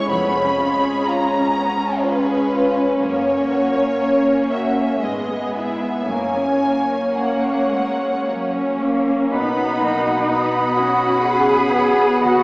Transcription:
0.00 0.14 E2 medium
0.00 2.97 G#3 soft
0.00 0.58 C#4 soft
0.00 1.07 G#4 soft
0.00 1.54 C#5 soft
0.00 2.97 C#5 medium
0.00 0.14 E5 soft
0.09 0.88 F1 medium
0.09 0.88 F2 medium
0.09 3.06 F2 medium
0.09 0.32 B3 medium
0.09 5.03 C#4 medium
0.09 1.04 B5 medium
0.35 0.59 C#4 soft
0.59 3.50 C#4 soft
0.59 0.83 F4 soft
0.83 1.07 G#4 soft
1.06 1.31 F4 soft
1.06 2.51 G#4 soft
1.06 2.02 A#5 medium
1.32 1.55 C#4 soft
1.55 1.79 B3 soft
1.55 4.50 C#5 soft
1.79 2.03 C#4 soft
2.02 2.27 F4 soft
2.02 3.01 B4 medium
2.02 3.06 G#5 soft
2.27 2.51 G#4 soft
2.52 2.77 F4 soft
2.52 3.06 G#4 soft
2.76 3.01 C#4 soft
3.00 3.81 F#1 medium
3.00 3.81 F#2 medium
3.00 5.07 F#2 medium
3.00 4.98 A#3 soft
3.00 3.24 A#3 soft
3.00 4.99 C#5 soft
3.00 4.51 C#5 medium
3.26 3.50 C#4 soft
3.51 5.07 C#4 soft
3.51 3.76 F#4 soft
3.76 4.01 C#4 soft
4.01 4.26 A#3 soft
4.01 5.07 A#4 soft
4.28 4.52 C#4 soft
4.51 4.78 F#4 soft
4.51 5.07 C#5 soft
4.51 5.03 E5 medium
4.78 5.03 C#4 soft
5.02 5.88 G#1 soft
5.02 5.88 G#2 soft
5.02 6.13 G#2 soft
5.02 6.09 G#3 soft
5.02 5.28 G#3 soft
5.02 6.09 B3 soft
5.02 6.09 G#4 soft
5.02 5.55 D#5 soft
5.31 5.56 B3 soft
5.55 6.13 E4 soft
5.55 5.82 E4 soft
5.55 6.13 B4 soft
5.55 6.07 E5 soft
5.82 6.09 B3 soft
6.08 6.98 F#1 soft
6.08 9.36 F#2 soft
6.08 6.98 F#2 medium
6.08 9.08 A#3 soft
6.08 6.35 A#3 soft
6.08 9.11 C#4 soft
6.08 9.08 C#5 soft
6.08 7.19 G#5 medium
6.36 6.64 C#4 soft
6.64 9.36 A#3 soft
6.64 6.92 A#3 soft
6.90 7.18 C#4 soft
7.19 7.46 A#3 soft
7.19 7.69 A#3 soft
7.19 8.27 C#5 soft
7.19 8.81 F#5 soft
7.47 7.74 C#4 soft
7.73 8.27 G#3 soft
7.73 8.00 A#3 soft
7.73 9.36 A#4 soft
8.01 8.28 C#4 soft
8.27 8.81 F#3 soft
8.27 8.54 A#3 soft
8.27 9.28 C#4 medium
8.27 9.36 C#5 soft
8.53 8.80 C#4 soft
8.80 9.32 A#3 soft
8.80 9.08 A#3 soft
8.80 9.36 C#4 soft
9.08 9.32 C#4 soft
9.31 12.19 B1 medium
9.31 12.27 B2 medium
9.31 9.77 B3 soft
9.31 12.43 B3 medium
9.31 10.76 D#4 medium
9.31 12.43 F#4 medium
9.31 9.83 B4 medium
9.31 12.43 F#5 soft
9.31 12.43 B5 medium
9.31 10.26 B5 soft
9.80 12.43 F#3 soft
9.80 10.29 A#3 medium
9.80 10.31 F#4 soft
10.29 10.76 B3 medium
10.29 11.73 B4 soft
10.29 11.27 D#5 medium
10.29 12.19 B5 medium
10.76 11.24 C#4 medium
10.76 11.23 F#4 medium
10.76 12.43 F#4 soft
11.24 11.72 C#4 medium
11.24 12.23 G#4 medium
11.24 11.73 B4 soft
11.24 12.43 D#5 soft
11.71 12.23 B3 medium
11.71 12.43 B4 soft
11.71 12.21 C#5 medium
12.22 12.43 D#2 medium
12.22 12.43 D#3 medium
12.22 12.43 B3 medium
12.22 12.43 F#4 medium
12.22 12.43 D#5 medium
12.22 12.43 F#5 medium

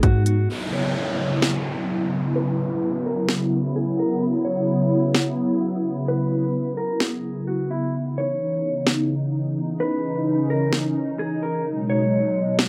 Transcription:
0.00 0.48 G#2 loud
0.00 0.46 G#3 medium
0.00 0.46 B3 medium
0.00 0.45 D#4 medium
0.00 0.25 F#4 medium
0.00 0.48 G#4 medium
0.00 kick loud
0.00 closed hi-hat medium
0.26 0.48 F#4 medium
0.26 closed hi-hat medium
0.50 7.90 C#3 medium
0.50 7.90 F#3 medium
0.50 9.76 B3 medium
0.50 7.90 E4 medium
0.50 downlifter medium
0.73 1.39 C#5 medium
1.42 snare loud
2.36 3.01 B4 medium
3.06 3.28 A#4 medium
3.29 snare loud
3.76 3.98 G#4 medium
3.99 4.21 A#4 medium
4.45 5.11 C#5 medium
5.15 snare loud
6.08 6.74 B4 loud
6.77 6.99 A#4 medium
7.00 7.44 G#4 medium
7.00 snare loud
7.47 7.69 F#4 medium
7.71 7.93 E4 medium
7.94 11.62 C#3 medium
7.94 11.62 E3 medium
7.94 12.69 D#4 medium
8.18 8.83 C#5 medium
8.87 snare loud
9.80 11.64 C#4 medium
9.80 10.46 B4 loud
10.50 10.72 A#4 medium
10.73 snare loud
11.19 11.41 G#4 medium
11.43 11.65 A#4 medium
11.65 12.69 B2 medium
11.65 12.69 F#3 medium
11.65 12.69 G#3 medium
11.90 12.55 C#5 medium
12.59 snare loud

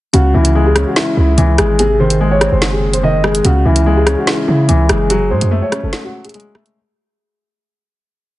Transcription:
0.13 0.33 C#2 loud
0.13 1.17 C#3 loud
0.13 0.31 F#4 loud
0.13 closed hi-hat medium
0.34 0.84 C#2 loud
0.34 1.36 E3 medium
0.34 0.64 E4 medium
0.45 closed hi-hat medium
0.55 1.57 G#3 medium
0.66 0.84 G#4 medium
0.76 1.79 C#4 medium
0.76 cross-stick loud
0.76 closed hi-hat medium
0.87 0.95 F#4 medium
0.96 1.14 E4 medium
0.96 snare loud
0.96 closed hi-hat medium
1.17 1.37 C#2 loud
1.17 1.56 E4 medium
1.38 1.58 C#2 loud
1.38 1.79 E3 medium
1.38 closed hi-hat medium
1.58 2.48 G#1 loud
1.58 1.79 G#3 medium
1.58 1.76 G#4 medium
1.58 cross-stick loud
1.58 closed hi-hat medium
1.79 2.83 C3 medium
1.79 1.97 G#4 loud
1.79 closed hi-hat medium
2.00 3.02 D#3 medium
2.00 2.30 C5 medium
2.10 closed hi-hat medium
2.21 3.22 G#3 medium
2.31 2.49 C#5 medium
2.41 3.45 C4 medium
2.41 cross-stick loud
2.41 closed hi-hat medium
2.52 3.41 F#1 loud
2.52 2.70 C5 medium
2.62 snare loud
2.62 closed hi-hat medium
2.72 2.90 G#4 medium
2.93 3.02 C5 medium
2.93 closed hi-hat medium
3.03 3.45 D#3 medium
3.03 3.21 D#5 medium
3.24 3.45 G#3 medium
3.24 3.42 G#4 medium
3.24 cross-stick loud
3.35 closed hi-hat medium
3.44 3.64 C#2 loud
3.44 4.48 C#3 loud
3.44 3.62 F#4 medium
3.44 closed hi-hat medium
3.65 4.16 C#2 loud
3.65 4.67 E3 medium
3.65 3.95 E4 medium
3.76 closed hi-hat medium
3.86 4.88 G#3 loud
3.97 4.15 G#4 medium
4.06 5.10 C#4 medium
4.06 cross-stick loud
4.06 closed hi-hat medium
4.18 4.26 F#4 medium
4.27 4.45 E4 medium
4.27 snare loud
4.27 closed hi-hat medium
4.48 4.68 C#3 loud
4.48 4.87 E4 medium
4.68 4.89 C#2 loud
4.68 5.10 E3 medium
4.68 closed hi-hat medium
4.89 5.32 F#1 loud
4.89 5.10 G#3 medium
4.89 5.07 G#4 medium
4.89 cross-stick loud
4.89 closed hi-hat medium
5.10 6.14 F#3 loud
5.10 5.28 G#4 loud
5.10 closed hi-hat medium
5.30 5.41 A2 loud
5.30 6.33 G#3 medium
5.30 5.60 C5 medium
5.41 5.62 F#2 loud
5.41 closed hi-hat medium
5.51 6.53 A3 loud
5.62 5.80 C#5 medium
5.72 6.76 C#4 medium
5.72 cross-stick loud
5.72 closed hi-hat medium
5.83 5.92 F#1 loud
5.83 6.01 A4 medium
5.93 snare loud
5.93 closed hi-hat medium
6.04 6.22 F#4 medium
6.25 6.73 G#4 medium
6.25 closed hi-hat medium
6.29 closed hi-hat medium
6.34 6.76 G#3 medium
6.34 closed hi-hat medium
6.40 closed hi-hat medium
6.55 6.76 A3 medium
6.55 cross-stick loud
6.66 closed hi-hat medium

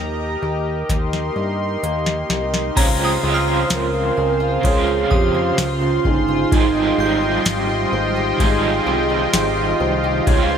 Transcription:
0.00 0.37 D#2 medium
0.00 2.77 D#3 medium
0.00 0.88 A#3 medium
0.00 1.35 D#4 medium
0.00 0.41 G4 medium
0.00 2.73 G4 medium
0.00 2.74 A#4 medium
0.00 2.73 D#5 medium
0.00 0.88 A#5 medium
0.42 0.84 D#2 loud
0.42 2.86 G4 medium
0.89 1.31 D#2 loud
0.89 1.82 A#3 medium
0.89 2.75 C6 medium
0.89 kick medium
0.89 snare soft
0.89 closed hi-hat medium
1.13 snare soft
1.36 1.77 G2 medium
1.36 2.28 D#4 soft
1.83 2.24 D#2 medium
1.83 2.86 A#3 soft
1.83 closed hi-hat medium
2.06 snare medium
2.30 2.71 C2 medium
2.30 2.86 D#4 medium
2.30 snare medium
2.54 snare medium
2.75 3.18 C#2 loud
2.75 3.23 C#3 medium
2.75 4.62 C#3 medium
2.75 3.24 G#3 medium
2.75 3.23 C4 loud
2.75 10.58 F4 medium
2.75 3.20 F4 medium
2.75 6.48 C5 medium
2.75 6.48 F5 medium
2.75 6.28 A#5 medium
2.75 10.23 C6 medium
2.75 kick loud
2.75 crash loud
2.75 ride soft
3.00 3.47 C4 medium
3.05 5.09 D#6 medium
3.21 3.65 C#2 loud
3.21 4.68 C4 medium
3.21 4.63 F4 medium
3.21 3.69 F4 medium
3.26 4.64 G#3 soft
3.34 6.80 F6 medium
3.47 3.93 C4 medium
3.70 4.12 C#2 loud
3.70 4.39 F4 medium
3.70 4.61 A#4 loud
3.70 snare loud
3.70 ride medium
3.70 tambourine medium
3.94 4.87 C4 medium
4.17 4.59 C#2 loud
4.17 6.05 G#3 medium
4.40 5.10 F4 medium
4.61 5.05 C#2 loud
4.61 6.50 C#3 medium
4.61 6.61 C#3 medium
4.61 6.52 G#3 medium
4.61 kick loud
4.61 ride medium
4.66 6.52 C4 medium
4.66 5.15 G#4 loud
4.71 6.53 F4 medium
4.87 5.34 C4 medium
5.11 5.52 F2 medium
5.11 5.56 F4 medium
5.11 5.62 G4 medium
5.11 6.94 D#6 soft
5.11 kick loud
5.34 5.81 C4 medium
5.57 5.99 C#2 loud
5.57 6.27 F4 medium
5.57 6.09 F4 loud
5.57 snare loud
5.57 ride medium
5.57 tambourine medium
5.81 6.75 C4 medium
6.05 6.46 G1 medium
6.05 6.52 G#3 medium
6.05 7.94 D#4 medium
6.05 kick medium
6.28 6.61 F4 medium
6.51 6.93 G#1 loud
6.51 6.98 G#2 medium
6.51 6.98 D#3 medium
6.51 6.99 G3 medium
6.51 8.39 G#3 medium
6.51 6.98 C4 medium
6.51 6.96 D#4 medium
6.51 10.23 D#5 medium
6.51 10.23 G5 medium
6.51 kick loud
6.51 ride soft
6.76 7.21 D#4 medium
6.97 7.40 G#1 loud
6.97 8.43 C4 soft
6.97 8.38 D#4 medium
6.97 7.44 G4 medium
6.97 10.51 G6 soft
7.02 8.39 G3 soft
7.22 7.68 D#4 medium
7.45 7.87 G#1 loud
7.45 8.15 G4 medium
7.45 snare loud
7.45 ride medium
7.45 tambourine medium
7.69 8.62 D#4 medium
7.92 8.34 G#1 medium
7.92 9.80 C4 medium
8.16 8.85 G4 medium
8.37 8.81 G#1 loud
8.37 10.26 D#3 medium
8.37 10.27 G3 medium
8.37 10.58 G#3 medium
8.37 kick medium
8.37 ride medium
8.43 10.28 C4 medium
8.43 10.29 D#4 medium
8.63 9.09 D#4 medium
8.86 9.27 C2 medium
8.86 9.32 G4 medium
9.10 9.56 D#4 medium
9.33 9.75 G#1 loud
9.33 10.03 G4 medium
9.33 10.58 C6 medium
9.33 snare loud
9.33 ride medium
9.33 tambourine medium
9.57 10.36 D#4 medium
9.80 10.21 C2 loud
9.80 10.51 C4 medium
10.04 10.36 G4 medium
10.26 10.58 C#2 loud
10.26 10.58 C#3 medium
10.26 10.58 G#3 loud
10.26 10.58 C4 loud
10.26 10.58 F4 loud
10.26 10.58 C5 medium
10.26 10.58 F5 medium
10.26 10.58 C6 medium
10.26 kick loud
10.26 ride soft
10.51 10.58 C4 medium

